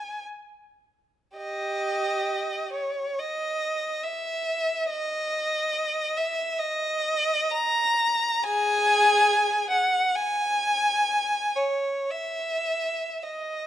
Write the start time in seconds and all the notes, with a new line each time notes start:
Already playing: G#5
1.38 G4 D#5
2.73 C#5
3.18 D#5
4.03 E5
4.89 D#5
6.17 E5
6.59 D#5
7.51 A#5
8.44 G#4 G#5
9.70 F#5
10.15 G#5
11.56 C#5
12.10 E5
13.23 D#5